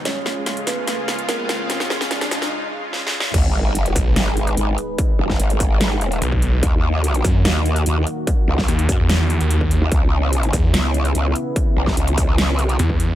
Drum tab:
CC |------------------------------------------------|------------------------------------------------|x-----------------------------------------------|------------------------------------------------|
HH |x-----------x--x--o-----x-----x--x--x-----x-----|x-----------x--x--o-----------------------------|x-----------x--x--o-----x-----x--x--x-----x-----|x-----------x--x--o-----x-----x--x--x-----x-----|
SD |o-----o-----o-----o-----o-----o-----o-----o-----|o--o--o--o--o--o--o--o--------------o---o---o---|------------------------o-----------------------|---------o--------------o-----------------------|
BD |------------------------------------------------|------------------------------------------------|o-----------------o-----------------------------|o--------o--------o--------------------o--------|

CC |------------------------------------------------|------------------------------------------------|------------------------------------------------|------------------------------------------------|
HH |x-----------x--x--o-----x-----x--x--x-----x-----|x-----------x--x--o-----x-----x--x--x-----x-----|x-----------x--x--o-----x-----x--x--x-----x-----|x-----------x--x--o-----x-----x--x--x-----x-----|
SD |------------------------o-----------------------|---------o--------------o-----------------------|------------------------o-----------------------|---------o--------------o-----------------------|
BD |o-----------------o-----------------------------|o--------o--------o--------------------o--------|o-----------------o-----------------------------|o--------o--------o--------------------o--------|